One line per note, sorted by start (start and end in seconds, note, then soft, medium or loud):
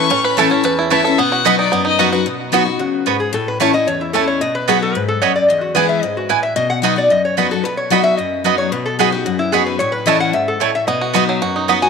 0.00 0.10 E4 medium
0.00 0.22 A4 medium
0.00 0.23 B4 medium
0.00 0.26 C#6 loud
0.10 0.62 A2 loud
0.10 0.49 C#4 medium
0.24 0.62 B4 medium
0.24 0.39 B5 loud
0.37 0.50 E3 loud
0.37 0.47 A3 loud
0.37 0.51 A3 loud
0.37 0.50 C#4 loud
0.37 0.47 E4 loud
0.37 0.48 E4 loud
0.37 0.76 A4 medium
0.37 0.47 C#5 loud
0.37 0.78 A5 medium
0.37 0.47 A5 loud
0.50 0.89 C#4 medium
0.50 0.64 C#4 medium
0.50 0.63 E4 medium
0.64 1.15 E2 loud
0.64 0.90 B4 medium
0.79 1.16 E4 medium
0.90 1.04 E3 medium
0.90 1.00 A3 medium
0.90 1.04 A3 medium
0.90 1.05 C#4 medium
0.90 1.00 E4 medium
0.90 1.04 E4 medium
0.90 1.18 B4 medium
0.90 1.00 C#5 loud
0.90 1.20 E5 loud
0.90 1.01 A5 loud
1.04 1.19 C#4 medium
1.04 1.18 E4 medium
1.04 1.18 A4 medium
1.18 1.70 B2 loud
1.18 1.44 B3 medium
1.18 1.58 F#5 loud
1.32 1.70 F#4 medium
1.45 1.71 F#3 medium
1.45 1.54 B3 loud
1.45 1.71 B3 soft
1.45 1.71 B3 loud
1.45 1.72 D#4 loud
1.45 1.54 F#4 loud
1.45 1.72 F#4 loud
1.45 1.54 D#5 loud
1.45 1.55 B5 loud
1.59 1.83 D#4 medium
1.59 1.84 D5 loud
1.72 2.24 F#2 medium
1.72 2.10 B3 medium
1.85 2.23 D#4 medium
1.85 2.01 D#5 loud
1.99 2.12 F#3 medium
1.99 2.08 B3 medium
1.99 2.13 B3 medium
1.99 2.13 D#4 medium
1.99 2.26 F#4 medium
1.99 2.08 F#4 loud
1.99 2.12 F#4 medium
1.99 2.08 D#5 loud
1.99 2.20 F#5 loud
1.99 2.09 B5 loud
2.13 2.26 D#4 medium
2.13 2.25 F#4 medium
2.13 2.26 B4 medium
2.26 2.77 B2 medium
2.52 2.66 F#3 medium
2.52 2.66 B3 loud
2.52 2.62 B3 medium
2.52 2.66 D#4 loud
2.52 2.62 F#4 loud
2.52 2.64 F#4 loud
2.52 2.62 D#5 loud
2.52 2.62 B5 loud
2.65 2.80 D#4 soft
2.65 2.79 F#4 medium
2.79 3.05 C#3 medium
2.79 3.05 F#4 medium
3.06 3.32 G#2 medium
3.06 3.16 B3 medium
3.06 3.16 F#4 medium
3.06 3.20 B4 medium
3.06 3.16 D#5 medium
3.06 3.16 B5 medium
3.20 3.33 G#4 medium
3.33 3.84 A2 loud
3.33 3.47 A4 medium
3.48 3.60 B4 medium
3.60 3.73 E3 medium
3.60 3.69 A3 loud
3.60 3.74 A3 medium
3.60 3.74 C#4 loud
3.60 3.70 E4 loud
3.60 3.72 E4 loud
3.60 3.74 C#5 medium
3.60 3.70 C#5 loud
3.60 3.70 A5 loud
3.73 3.88 C#4 soft
3.73 3.87 E4 medium
3.73 3.87 D#5 loud
3.87 4.39 E2 medium
3.87 4.01 C#5 medium
4.01 4.14 E4 medium
4.13 4.40 E3 medium
4.13 4.23 A3 medium
4.13 4.40 A3 medium
4.13 4.40 C#4 medium
4.13 4.24 E4 medium
4.13 4.41 E4 medium
4.13 4.27 A4 medium
4.13 4.24 C#5 medium
4.13 4.24 A5 loud
4.28 4.41 C#5 medium
4.41 4.93 B2 medium
4.41 4.55 D#5 medium
4.55 4.68 B4 loud
4.68 4.94 F#3 medium
4.68 4.77 B3 loud
4.68 4.94 B3 loud
4.68 4.94 D#4 loud
4.68 4.77 F#4 loud
4.68 4.95 F#4 loud
4.68 4.82 G#4 medium
4.68 4.78 D#5 loud
4.68 4.78 B5 loud
4.82 4.94 A4 medium
4.94 5.21 G#2 medium
4.94 5.08 B4 loud
5.08 5.22 A4 medium
5.22 5.48 F#2 medium
5.22 5.31 B3 medium
5.22 5.31 F#4 medium
5.22 5.35 C#5 medium
5.22 5.31 D#5 loud
5.22 5.32 B5 medium
5.36 5.48 D5 medium
5.48 6.01 E2 medium
5.48 5.62 D#5 medium
5.61 5.75 F#4 medium
5.75 6.01 E3 medium
5.75 6.02 G#3 medium
5.75 5.85 B3 loud
5.75 6.02 B3 loud
5.75 5.85 E4 medium
5.75 6.02 E4 medium
5.75 5.89 B4 medium
5.75 5.85 B4 loud
5.75 5.85 G#5 loud
5.89 6.02 E5 loud
6.02 6.29 G#2 medium
6.02 6.16 D#5 medium
6.17 6.30 F#4 medium
6.29 6.55 A2 medium
6.29 6.39 B3 medium
6.29 6.39 E4 medium
6.29 6.43 B4 medium
6.29 6.39 B4 medium
6.29 6.39 G#5 medium
6.43 6.56 E5 loud
6.56 7.08 B2 loud
6.56 6.70 D#5 medium
6.70 6.78 F#5 loud
6.82 6.96 F#3 medium
6.82 6.97 B3 medium
6.82 6.93 B3 loud
6.82 6.97 D#4 loud
6.82 6.95 F#4 loud
6.82 6.93 F#4 loud
6.82 6.93 D#5 loud
6.82 6.93 B5 loud
6.96 7.11 D#4 medium
6.96 7.09 F#4 medium
6.96 7.11 D5 medium
7.10 7.62 F#2 medium
7.10 7.24 D#5 loud
7.25 7.37 C#5 medium
7.37 7.51 F#3 medium
7.37 7.46 B3 medium
7.37 7.51 B3 medium
7.37 7.51 D#4 medium
7.37 7.46 F#4 medium
7.37 7.50 F#4 medium
7.37 7.51 B4 medium
7.37 7.47 D#5 medium
7.37 7.47 B5 medium
7.51 7.65 D#4 medium
7.51 7.64 F#4 medium
7.51 7.64 A4 medium
7.64 8.16 B2 medium
7.64 7.77 B4 medium
7.77 7.91 C#5 medium
7.90 8.17 F#3 loud
7.90 8.00 B3 loud
7.90 8.17 B3 medium
7.90 8.17 D#4 loud
7.90 8.01 F#4 loud
7.90 8.18 F#4 loud
7.90 8.03 D#5 medium
7.90 8.01 D#5 loud
7.90 8.01 B5 loud
8.04 8.17 E5 loud
8.17 8.70 F#2 medium
8.17 8.56 D#5 medium
8.44 8.70 F#3 medium
8.44 8.54 B3 medium
8.44 8.71 B3 medium
8.44 8.71 D#4 medium
8.44 8.54 F#4 medium
8.44 8.71 F#4 medium
8.44 8.54 D#5 loud
8.44 8.55 B5 medium
8.58 8.71 C#5 loud
8.72 9.23 B2 medium
8.72 8.85 B4 medium
8.86 8.99 A4 medium
8.99 9.12 F#3 medium
8.99 9.08 B3 loud
8.99 9.12 B3 medium
8.99 9.13 D#4 loud
8.99 9.08 F#4 loud
8.99 9.11 F#4 medium
8.99 9.12 G#4 medium
8.99 9.09 D#5 loud
8.99 9.09 B5 loud
9.12 9.26 D#4 medium
9.12 9.25 F#4 medium
9.12 9.25 G4 medium
9.26 9.77 F#2 medium
9.26 9.39 F#4 medium
9.39 9.52 E4 medium
9.52 9.78 F#3 medium
9.52 9.62 B3 medium
9.52 9.79 B3 medium
9.52 9.79 D#4 medium
9.52 9.62 F#4 medium
9.52 9.79 F#4 medium
9.52 9.66 G#4 medium
9.52 9.62 D#5 medium
9.52 9.62 B5 loud
9.66 9.79 B4 medium
9.79 10.31 A2 medium
9.79 9.93 C#5 loud
9.92 10.06 B4 loud
10.06 10.32 E3 medium
10.06 10.32 A3 loud
10.06 10.16 A3 loud
10.06 10.33 C#4 medium
10.06 10.16 E4 loud
10.06 10.33 E4 loud
10.06 10.16 C#5 loud
10.06 10.20 D#5 loud
10.06 10.16 A5 loud
10.20 10.33 F#5 loud
10.33 10.59 G#2 medium
10.33 10.47 E5 medium
10.48 10.61 A4 medium
10.60 10.86 A2 medium
10.60 10.69 A3 medium
10.60 10.70 E4 medium
10.60 10.70 C#5 medium
10.60 10.74 C#5 medium
10.60 10.70 A5 medium
10.75 10.87 E5 loud
10.87 11.39 B2 loud
10.87 11.14 B3 medium
10.87 11.64 D#5 medium
11.01 11.42 F#4 medium
11.13 11.40 F#3 loud
11.13 11.23 B3 loud
11.13 11.69 B3 medium
11.13 11.40 B3 loud
11.13 11.41 D#4 loud
11.13 11.23 F#4 medium
11.13 11.41 F#4 loud
11.13 11.23 D#5 loud
11.13 11.24 B5 loud
11.29 11.89 F#3 medium
11.42 11.89 F#2 medium
11.42 11.82 F#4 medium
11.56 11.89 D#4 medium
11.68 11.81 F#3 medium
11.68 11.77 B3 medium
11.68 11.82 B3 medium
11.68 11.89 B3 medium
11.68 11.82 D#4 medium
11.68 11.77 F#4 medium
11.68 11.81 F#4 medium
11.68 11.78 D#5 loud
11.68 11.78 B5 loud
11.82 11.89 D#4 medium
11.82 11.89 F#4 medium
11.82 11.89 G#5 loud